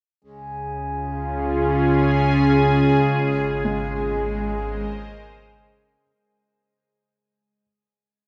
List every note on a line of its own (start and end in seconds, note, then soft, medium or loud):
0.23 3.07 C#2 medium
0.23 6.12 C#3 medium
0.23 3.13 C#3 medium
0.23 6.11 G#3 medium
0.23 6.04 G#4 medium
0.23 6.03 G#5 medium
0.66 6.02 G#4 medium
0.72 4.27 F4 medium
0.76 3.13 C#4 medium
1.46 4.24 G#5 medium
3.10 5.97 G#1 medium
3.10 6.01 G#3 medium
3.64 7.62 G#3 medium
4.40 6.01 A#4 medium
4.40 6.02 C5 medium
4.40 6.01 D#5 medium